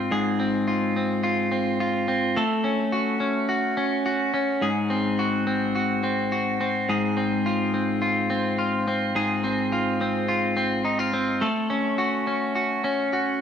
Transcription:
0, 0, Header, 1, 2, 480
1, 0, Start_track
1, 0, Tempo, 566038
1, 88, Time_signature, 4, 2, 24, 8
1, 11373, End_track
2, 0, Start_track
2, 0, Title_t, "Clean electric guitar"
2, 0, Program_c, 0, 27
2, 0, Note_on_c, 0, 44, 87
2, 0, Note_on_c, 0, 60, 58
2, 0, Note_on_c, 0, 65, 61
2, 0, Note_on_c, 0, 68, 61
2, 87, Note_off_c, 0, 44, 0
2, 97, Note_on_c, 0, 44, 80
2, 98, Note_off_c, 0, 68, 0
2, 101, Note_on_c, 0, 68, 67
2, 333, Note_off_c, 0, 60, 0
2, 336, Note_on_c, 0, 60, 64
2, 569, Note_off_c, 0, 65, 0
2, 573, Note_on_c, 0, 65, 62
2, 807, Note_off_c, 0, 60, 0
2, 818, Note_on_c, 0, 60, 55
2, 1037, Note_off_c, 0, 65, 0
2, 1047, Note_on_c, 0, 65, 68
2, 1275, Note_off_c, 0, 60, 0
2, 1285, Note_on_c, 0, 60, 63
2, 1519, Note_off_c, 0, 65, 0
2, 1529, Note_on_c, 0, 65, 69
2, 1754, Note_off_c, 0, 60, 0
2, 1765, Note_on_c, 0, 60, 61
2, 2006, Note_on_c, 0, 57, 88
2, 2008, Note_off_c, 0, 68, 0
2, 2011, Note_on_c, 0, 69, 69
2, 2012, Note_off_c, 0, 44, 0
2, 2054, Note_off_c, 0, 60, 0
2, 2057, Note_off_c, 0, 65, 0
2, 2238, Note_on_c, 0, 61, 61
2, 2480, Note_on_c, 0, 66, 64
2, 2705, Note_off_c, 0, 61, 0
2, 2715, Note_on_c, 0, 61, 57
2, 2954, Note_off_c, 0, 66, 0
2, 2957, Note_on_c, 0, 66, 64
2, 3188, Note_off_c, 0, 61, 0
2, 3198, Note_on_c, 0, 61, 66
2, 3437, Note_off_c, 0, 66, 0
2, 3441, Note_on_c, 0, 66, 67
2, 3668, Note_off_c, 0, 61, 0
2, 3678, Note_on_c, 0, 61, 63
2, 3913, Note_on_c, 0, 44, 81
2, 3916, Note_off_c, 0, 69, 0
2, 3920, Note_on_c, 0, 68, 69
2, 3927, Note_off_c, 0, 57, 0
2, 3971, Note_off_c, 0, 61, 0
2, 4156, Note_on_c, 0, 60, 65
2, 4181, Note_off_c, 0, 66, 0
2, 4401, Note_on_c, 0, 66, 66
2, 4634, Note_off_c, 0, 60, 0
2, 4638, Note_on_c, 0, 60, 63
2, 4870, Note_off_c, 0, 66, 0
2, 4880, Note_on_c, 0, 66, 65
2, 5113, Note_off_c, 0, 60, 0
2, 5117, Note_on_c, 0, 60, 61
2, 5350, Note_off_c, 0, 66, 0
2, 5360, Note_on_c, 0, 66, 60
2, 5598, Note_off_c, 0, 60, 0
2, 5602, Note_on_c, 0, 60, 66
2, 5831, Note_off_c, 0, 44, 0
2, 5841, Note_on_c, 0, 44, 80
2, 5843, Note_off_c, 0, 68, 0
2, 5846, Note_on_c, 0, 68, 66
2, 5892, Note_off_c, 0, 66, 0
2, 6076, Note_off_c, 0, 60, 0
2, 6079, Note_on_c, 0, 60, 66
2, 6325, Note_on_c, 0, 65, 67
2, 6559, Note_off_c, 0, 60, 0
2, 6562, Note_on_c, 0, 60, 59
2, 6795, Note_off_c, 0, 65, 0
2, 6798, Note_on_c, 0, 65, 67
2, 7035, Note_off_c, 0, 60, 0
2, 7038, Note_on_c, 0, 60, 62
2, 7276, Note_off_c, 0, 65, 0
2, 7280, Note_on_c, 0, 65, 65
2, 7523, Note_off_c, 0, 60, 0
2, 7527, Note_on_c, 0, 60, 64
2, 7752, Note_off_c, 0, 44, 0
2, 7762, Note_on_c, 0, 44, 76
2, 7763, Note_off_c, 0, 68, 0
2, 7767, Note_on_c, 0, 68, 71
2, 8001, Note_off_c, 0, 60, 0
2, 8004, Note_on_c, 0, 60, 67
2, 8243, Note_off_c, 0, 65, 0
2, 8246, Note_on_c, 0, 65, 69
2, 8479, Note_off_c, 0, 60, 0
2, 8489, Note_on_c, 0, 60, 64
2, 8711, Note_off_c, 0, 65, 0
2, 8721, Note_on_c, 0, 65, 74
2, 8950, Note_off_c, 0, 60, 0
2, 8960, Note_on_c, 0, 60, 66
2, 9194, Note_off_c, 0, 65, 0
2, 9197, Note_on_c, 0, 63, 64
2, 9319, Note_off_c, 0, 63, 0
2, 9319, Note_on_c, 0, 65, 57
2, 9432, Note_off_c, 0, 60, 0
2, 9442, Note_on_c, 0, 60, 59
2, 9678, Note_on_c, 0, 57, 84
2, 9680, Note_off_c, 0, 68, 0
2, 9683, Note_on_c, 0, 69, 68
2, 9685, Note_off_c, 0, 44, 0
2, 9731, Note_off_c, 0, 65, 0
2, 9733, Note_off_c, 0, 60, 0
2, 9921, Note_on_c, 0, 61, 65
2, 10160, Note_on_c, 0, 66, 68
2, 10396, Note_off_c, 0, 61, 0
2, 10406, Note_on_c, 0, 61, 58
2, 10643, Note_off_c, 0, 66, 0
2, 10646, Note_on_c, 0, 66, 62
2, 10879, Note_off_c, 0, 61, 0
2, 10889, Note_on_c, 0, 61, 62
2, 11131, Note_off_c, 0, 66, 0
2, 11135, Note_on_c, 0, 66, 65
2, 11365, Note_off_c, 0, 61, 0
2, 11373, Note_off_c, 0, 57, 0
2, 11373, Note_off_c, 0, 66, 0
2, 11373, Note_off_c, 0, 69, 0
2, 11373, End_track
0, 0, End_of_file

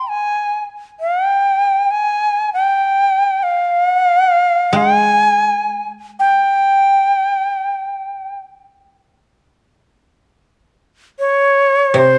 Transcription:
0, 0, Header, 1, 3, 480
1, 0, Start_track
1, 0, Tempo, 500000
1, 11698, End_track
2, 0, Start_track
2, 0, Title_t, "Shakuhachi"
2, 0, Program_c, 0, 77
2, 77, Note_on_c, 0, 80, 62
2, 613, Note_off_c, 0, 80, 0
2, 962, Note_on_c, 0, 77, 69
2, 1202, Note_off_c, 0, 77, 0
2, 1202, Note_on_c, 0, 79, 69
2, 1832, Note_on_c, 0, 80, 71
2, 1846, Note_off_c, 0, 79, 0
2, 2428, Note_off_c, 0, 80, 0
2, 2433, Note_on_c, 0, 79, 79
2, 3293, Note_on_c, 0, 77, 79
2, 3307, Note_off_c, 0, 79, 0
2, 3744, Note_off_c, 0, 77, 0
2, 3744, Note_on_c, 0, 78, 79
2, 3869, Note_off_c, 0, 78, 0
2, 3869, Note_on_c, 0, 77, 79
2, 4003, Note_off_c, 0, 77, 0
2, 4003, Note_on_c, 0, 78, 79
2, 4128, Note_off_c, 0, 78, 0
2, 4128, Note_on_c, 0, 77, 79
2, 4573, Note_on_c, 0, 80, 84
2, 4587, Note_off_c, 0, 77, 0
2, 5646, Note_off_c, 0, 80, 0
2, 5947, Note_on_c, 0, 79, 78
2, 8050, Note_off_c, 0, 79, 0
2, 10745, Note_on_c, 0, 73, 92
2, 11500, Note_on_c, 0, 72, 83
2, 11514, Note_off_c, 0, 73, 0
2, 11698, Note_off_c, 0, 72, 0
2, 11698, End_track
3, 0, Start_track
3, 0, Title_t, "Koto"
3, 0, Program_c, 1, 107
3, 4538, Note_on_c, 1, 56, 51
3, 7267, Note_off_c, 1, 56, 0
3, 11462, Note_on_c, 1, 48, 54
3, 11698, Note_off_c, 1, 48, 0
3, 11698, End_track
0, 0, End_of_file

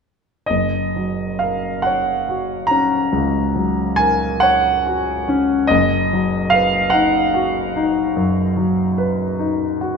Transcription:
0, 0, Header, 1, 2, 480
1, 0, Start_track
1, 0, Key_signature, 6, "major"
1, 0, Tempo, 925926
1, 259, Time_signature, 12, 3, 24, 8
1, 739, Tempo, 858369
1, 2659, Tempo, 825309
1, 5632, End_track
2, 0, Start_track
2, 0, Title_t, "Grand piano"
2, 0, Program_c, 0, 0
2, 241, Note_on_c, 0, 75, 64
2, 259, Note_on_c, 0, 30, 43
2, 345, Control_c, 0, 64, 127
2, 498, Note_on_c, 0, 54, 32
2, 720, Note_on_c, 0, 77, 54
2, 730, Note_off_c, 0, 75, 0
2, 741, Note_on_c, 0, 70, 34
2, 888, Note_off_c, 0, 54, 0
2, 961, Note_on_c, 0, 78, 65
2, 976, Note_off_c, 0, 77, 0
2, 984, Note_on_c, 0, 73, 37
2, 1130, Note_off_c, 0, 70, 0
2, 1222, Note_on_c, 0, 66, 39
2, 1362, Note_off_c, 0, 73, 0
2, 1434, Note_on_c, 0, 82, 73
2, 1444, Note_off_c, 0, 78, 0
2, 1456, Note_on_c, 0, 61, 34
2, 1596, Note_off_c, 0, 66, 0
2, 1669, Note_off_c, 0, 30, 0
2, 1689, Note_on_c, 0, 37, 36
2, 1835, Note_off_c, 0, 61, 0
2, 1930, Note_on_c, 0, 54, 35
2, 2077, Note_off_c, 0, 37, 0
2, 2157, Note_on_c, 0, 80, 76
2, 2165, Note_off_c, 0, 82, 0
2, 2177, Note_on_c, 0, 70, 38
2, 2322, Note_off_c, 0, 54, 0
2, 2403, Note_on_c, 0, 78, 76
2, 2411, Note_off_c, 0, 80, 0
2, 2418, Note_on_c, 0, 73, 43
2, 2565, Note_off_c, 0, 70, 0
2, 2662, Note_on_c, 0, 66, 41
2, 2807, Note_off_c, 0, 73, 0
2, 2907, Note_on_c, 0, 61, 44
2, 3057, Note_off_c, 0, 66, 0
2, 3133, Note_on_c, 0, 75, 76
2, 3146, Note_off_c, 0, 78, 0
2, 3150, Note_on_c, 0, 30, 55
2, 3154, Note_off_c, 0, 61, 0
2, 3165, Control_c, 0, 64, 0
2, 3242, Control_c, 0, 64, 127
2, 3399, Note_on_c, 0, 54, 39
2, 3613, Note_on_c, 0, 77, 76
2, 3624, Note_off_c, 0, 75, 0
2, 3635, Note_on_c, 0, 71, 41
2, 3776, Note_off_c, 0, 54, 0
2, 3845, Note_on_c, 0, 78, 73
2, 3859, Note_off_c, 0, 77, 0
2, 3864, Note_on_c, 0, 63, 42
2, 4013, Note_off_c, 0, 71, 0
2, 4103, Note_on_c, 0, 66, 46
2, 4249, Note_off_c, 0, 63, 0
2, 4347, Note_on_c, 0, 63, 44
2, 4489, Note_off_c, 0, 66, 0
2, 4560, Note_off_c, 0, 30, 0
2, 4582, Note_on_c, 0, 42, 43
2, 4727, Note_off_c, 0, 63, 0
2, 4817, Note_on_c, 0, 54, 40
2, 4965, Note_off_c, 0, 42, 0
2, 5056, Note_on_c, 0, 71, 46
2, 5203, Note_off_c, 0, 54, 0
2, 5295, Note_on_c, 0, 63, 44
2, 5443, Note_off_c, 0, 71, 0
2, 5539, Note_on_c, 0, 66, 45
2, 5632, Note_off_c, 0, 63, 0
2, 5632, Note_off_c, 0, 66, 0
2, 5632, Note_off_c, 0, 78, 0
2, 5632, End_track
0, 0, End_of_file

